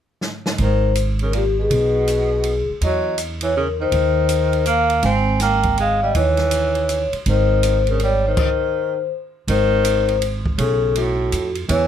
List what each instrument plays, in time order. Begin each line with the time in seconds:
0.21 snare
0.46 snare
0.58 upright bass G#1, tenor saxophone D#3, kick, ride
0.62 vibraphone C5
0.95 hi-hat pedal, ride
1.19 tenor saxophone C#3, ride
1.24 vibraphone A#4
1.33 tenor saxophone A#2, vibraphone G4, ride
1.59 tenor saxophone B2, vibraphone G#4
1.70 upright bass B1, kick, ride
2.08 hi-hat pedal, ride
2.44 ride
2.70 muted upright bass stroke
2.81 upright bass E2, tenor saxophone F#3, vibraphone D#5, kick, ride
3.18 hi-hat pedal, ride
3.41 tenor saxophone E3, vibraphone C#5, ride
3.57 tenor saxophone C#3, vibraphone A#4
3.81 tenor saxophone D#3, vibraphone C5
3.92 upright bass D#2, kick, ride
4.29 hi-hat pedal, ride
4.53 ride
4.66 tenor saxophone A#3, vibraphone F5, hi-hat pedal, ride
4.90 ride
5.03 upright bass G#1, tenor saxophone C4, vibraphone G#5, kick, ride
5.40 tenor saxophone A#3, vibraphone G5, snare, hi-hat pedal, ride
5.63 kick, ride
5.78 tenor saxophone G#3, vibraphone F5, ride
6.02 tenor saxophone G3, vibraphone D#5
6.15 upright bass D#2, tenor saxophone E3, vibraphone C#5, kick, ride
6.37 snare, ride
6.51 hi-hat pedal, ride
6.75 ride
6.89 hi-hat pedal, ride
7.12 muted upright bass stroke, ride
7.26 upright bass G#1, tenor saxophone D#3, vibraphone C5, kick, ride
7.63 hi-hat pedal, ride
7.87 tenor saxophone C#3, vibraphone A#4, ride
8.00 tenor saxophone G3, vibraphone C#5, ride
8.27 tenor saxophone D#3, vibraphone C5
8.37 kick, crash
9.48 upright bass G#1, tenor saxophone D#3, vibraphone C5, kick, ride
9.85 hi-hat pedal, ride
10.08 ride
10.22 ride
10.46 kick
10.58 upright bass B1, tenor saxophone C#3, vibraphone A4, kick, ride
10.95 tenor saxophone A2, vibraphone F#4, ride
11.32 upright bass F2, hi-hat pedal, ride
11.55 ride
11.69 upright bass E2, tenor saxophone E3, vibraphone C#5, kick, ride